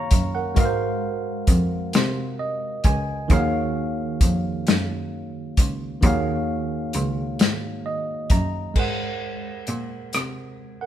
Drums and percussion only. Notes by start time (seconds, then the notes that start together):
0.11 kick, closed hi-hat
0.56 kick, closed hi-hat
1.47 kick, closed hi-hat
1.93 snare, closed hi-hat
2.84 kick, closed hi-hat
3.30 kick, closed hi-hat
4.21 kick, closed hi-hat
4.67 snare, closed hi-hat
5.57 kick, closed hi-hat
6.03 kick, closed hi-hat
6.93 closed hi-hat
7.39 snare, closed hi-hat
8.30 kick, closed hi-hat
8.76 kick, crash
9.67 closed hi-hat
10.13 cross-stick, closed hi-hat